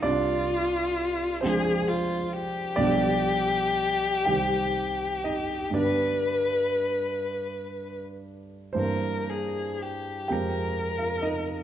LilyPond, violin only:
\new Staff \with { instrumentName = "Violin" } { \time 6/8 \key c \minor \tempo 4. = 41 f'4. aes'8 f'8 g'8~ | g'2. | b'2~ b'16 r8. | bes'8 aes'8 g'8 bes'4. | }